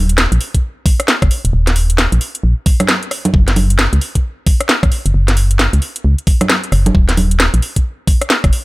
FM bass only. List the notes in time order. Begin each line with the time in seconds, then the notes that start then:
Already playing: D#1
0.32 A#1
1.22 F#1
1.45 D#1
1.53 D#1
2.12 A#1
2.43 A#1
3.34 F#1
3.93 C#2
4.83 A1
5.06 F#1
5.14 F#1
5.73 C#2
6.04 C#2
6.72 F#1
6.95 D#1
7.54 A#1
8.44 F#1